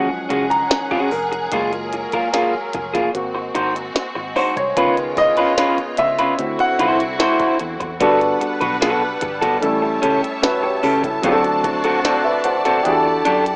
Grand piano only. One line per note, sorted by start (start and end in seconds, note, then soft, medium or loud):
0.00 0.44 F3 medium
0.00 0.44 F#3 medium
0.00 0.44 G#3 soft
0.00 0.44 C#4 soft
0.00 0.53 F#5 medium
0.50 1.13 A#5 loud
1.12 3.11 A#4 medium
1.51 3.10 G#3 medium
1.51 3.10 A#3 soft
1.51 3.11 F4 medium
3.14 4.72 A#3 medium
3.14 4.73 C4 soft
3.14 4.73 F#4 medium
4.36 4.55 C5 medium
4.57 5.19 C#5 medium
4.77 6.35 D#3 soft
4.77 6.35 B3 medium
4.77 6.35 F4 medium
5.18 6.01 D#5 loud
5.98 6.55 E5 loud
6.39 7.96 C4 medium
6.39 7.97 E4 medium
6.39 7.97 F#4 medium
6.60 7.77 F#5 loud
8.00 9.59 G3 medium
8.00 9.59 B3 medium
8.00 9.59 D4 medium
8.00 9.60 F#4 medium
8.00 9.60 A4 medium
9.61 11.20 G3 medium
9.61 11.20 A3 medium
9.61 11.21 C#4 medium
9.61 10.42 E4 medium
9.61 10.42 A4 medium
10.42 10.62 F#4 medium
10.42 10.62 B4 medium
10.63 11.02 G4 medium
10.63 11.02 C#5 medium
11.04 11.43 E4 medium
11.04 11.30 A4 medium
11.22 12.81 F#3 medium
11.22 12.82 A3 medium
11.22 12.82 C4 medium
11.22 12.82 D4 medium
11.22 11.31 G4 medium
11.32 11.67 A4 medium
12.05 12.24 A4 medium
12.05 12.24 D5 medium
12.24 12.44 B4 medium
12.24 12.44 E5 medium
12.44 12.64 C5 medium
12.44 12.64 F#5 medium
12.65 12.91 A4 medium
12.65 13.03 D5 medium
12.83 13.56 D4 medium
12.83 13.56 E4 medium
12.83 13.56 F#4 medium
12.83 13.56 G4 medium
12.83 12.92 G#4 medium
12.92 13.56 A4 medium